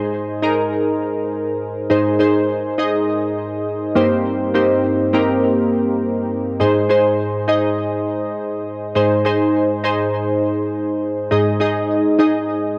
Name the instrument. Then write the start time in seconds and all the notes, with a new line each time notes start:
synth keys
Already playing: G#2 D#4 G#4 C5
0.42 D#4 G#4 A#4
1.90 G#2 D#4 G#4 C5
2.19 D#4 G#4 C5
2.78 D#4 G#4 D#5
3.95 G2 A#3 C4 D#4 G4 C5
4.54 A#3 C4 D#4 G4 C5
5.13 A#3 C4 D#4 G4 A#4
6.60 G#2 D#4 G#4 C5
6.89 D#4 G#4 C5
7.48 D#4 G#4 D#5
8.95 G#2 D#4 G#4 C5
9.25 D#4 G#4 C5
9.84 D#4 G#4 C5
11.31 G#2 D#4 G#4 D#5
11.60 D#4 G#4 D#5
12.19 D#4 G#4 D#5